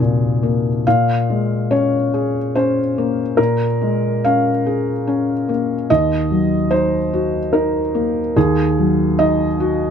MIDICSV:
0, 0, Header, 1, 2, 480
1, 0, Start_track
1, 0, Key_signature, -5, "minor"
1, 0, Tempo, 849858
1, 481, Time_signature, 3, 2, 24, 8
1, 2391, Tempo, 825309
1, 5689, End_track
2, 0, Start_track
2, 0, Title_t, "Felt piano"
2, 0, Program_c, 0, 0
2, 0, Control_c, 0, 64, 127
2, 0, Note_on_c, 0, 39, 54
2, 0, Note_on_c, 0, 46, 39
2, 0, Note_on_c, 0, 48, 37
2, 0, Note_on_c, 0, 54, 38
2, 0, Note_on_c, 0, 66, 49
2, 0, Note_on_c, 0, 68, 73
2, 1, Note_off_c, 0, 46, 0
2, 1, Note_on_c, 0, 46, 42
2, 243, Note_on_c, 0, 58, 40
2, 389, Note_off_c, 0, 46, 0
2, 461, Note_off_c, 0, 39, 0
2, 484, Note_off_c, 0, 58, 0
2, 489, Control_c, 0, 64, 0
2, 490, Note_on_c, 0, 77, 85
2, 491, Note_off_c, 0, 66, 0
2, 491, Note_off_c, 0, 68, 0
2, 493, Note_on_c, 0, 46, 59
2, 494, Note_off_c, 0, 48, 0
2, 494, Note_off_c, 0, 54, 0
2, 601, Control_c, 0, 64, 127
2, 733, Note_on_c, 0, 56, 43
2, 964, Note_on_c, 0, 61, 52
2, 965, Note_on_c, 0, 73, 76
2, 966, Note_off_c, 0, 77, 0
2, 1108, Note_off_c, 0, 56, 0
2, 1208, Note_on_c, 0, 68, 47
2, 1342, Note_off_c, 0, 61, 0
2, 1437, Note_off_c, 0, 73, 0
2, 1443, Note_on_c, 0, 72, 78
2, 1447, Note_on_c, 0, 61, 50
2, 1582, Note_off_c, 0, 68, 0
2, 1684, Note_on_c, 0, 58, 48
2, 1818, Note_off_c, 0, 61, 0
2, 1890, Note_off_c, 0, 46, 0
2, 1904, Note_on_c, 0, 70, 72
2, 1910, Note_on_c, 0, 46, 54
2, 1911, Note_off_c, 0, 72, 0
2, 1918, Control_c, 0, 64, 0
2, 2005, Control_c, 0, 64, 127
2, 2057, Note_off_c, 0, 58, 0
2, 2155, Note_on_c, 0, 56, 46
2, 2390, Note_off_c, 0, 70, 0
2, 2398, Note_on_c, 0, 77, 77
2, 2404, Note_on_c, 0, 61, 51
2, 2541, Note_off_c, 0, 56, 0
2, 2641, Note_on_c, 0, 68, 48
2, 2783, Note_off_c, 0, 61, 0
2, 2880, Note_on_c, 0, 61, 51
2, 3021, Note_off_c, 0, 68, 0
2, 3117, Note_off_c, 0, 77, 0
2, 3121, Note_on_c, 0, 58, 47
2, 3261, Note_off_c, 0, 61, 0
2, 3332, Note_off_c, 0, 46, 0
2, 3357, Note_off_c, 0, 58, 0
2, 3361, Note_on_c, 0, 75, 89
2, 3363, Note_on_c, 0, 39, 53
2, 3365, Control_c, 0, 64, 0
2, 3477, Control_c, 0, 64, 127
2, 3596, Note_on_c, 0, 54, 44
2, 3829, Note_on_c, 0, 72, 86
2, 3834, Note_off_c, 0, 75, 0
2, 3836, Note_on_c, 0, 63, 50
2, 3976, Note_off_c, 0, 54, 0
2, 4078, Note_on_c, 0, 66, 51
2, 4216, Note_off_c, 0, 63, 0
2, 4307, Note_on_c, 0, 70, 69
2, 4308, Note_off_c, 0, 72, 0
2, 4311, Note_on_c, 0, 63, 55
2, 4456, Note_off_c, 0, 66, 0
2, 4551, Note_on_c, 0, 58, 50
2, 4693, Note_off_c, 0, 63, 0
2, 4770, Note_off_c, 0, 39, 0
2, 4788, Note_off_c, 0, 70, 0
2, 4794, Note_on_c, 0, 39, 65
2, 4794, Note_on_c, 0, 68, 76
2, 4798, Control_c, 0, 64, 0
2, 4893, Control_c, 0, 64, 127
2, 4937, Note_off_c, 0, 58, 0
2, 5036, Note_on_c, 0, 54, 47
2, 5272, Note_on_c, 0, 75, 91
2, 5277, Note_on_c, 0, 63, 57
2, 5281, Note_off_c, 0, 68, 0
2, 5423, Note_off_c, 0, 54, 0
2, 5513, Note_on_c, 0, 66, 51
2, 5656, Note_off_c, 0, 63, 0
2, 5689, Note_off_c, 0, 39, 0
2, 5689, Note_off_c, 0, 66, 0
2, 5689, Note_off_c, 0, 75, 0
2, 5689, End_track
0, 0, End_of_file